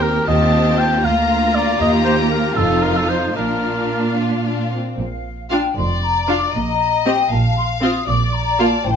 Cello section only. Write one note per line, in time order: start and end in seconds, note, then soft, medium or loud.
0.00 0.26 D#2 soft
0.28 1.02 D#2 soft
1.04 1.80 D2 medium
1.81 2.53 D#2 soft
2.57 3.34 F2 soft
3.36 4.76 A#2 soft
4.99 5.61 A#2 soft
5.77 6.39 F2 soft
6.55 7.16 A#2 soft
7.31 7.93 A#2 soft
8.08 8.69 A#2 medium
8.85 8.96 A2 medium